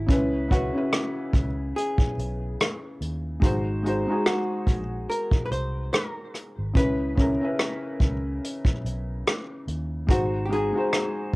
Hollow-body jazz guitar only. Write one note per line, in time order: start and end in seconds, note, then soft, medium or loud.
0.00 0.53 E4 medium
0.51 1.30 F#4 medium
1.76 2.97 G#4 medium
4.26 5.09 F#4 medium
5.10 5.42 A#4 medium
5.46 5.51 B4 medium
5.52 5.93 C5 medium
5.93 6.76 A#4 loud
6.77 9.22 B4 loud
10.11 10.45 F#4 loud
10.45 10.51 G4 medium
10.53 11.35 G#4 medium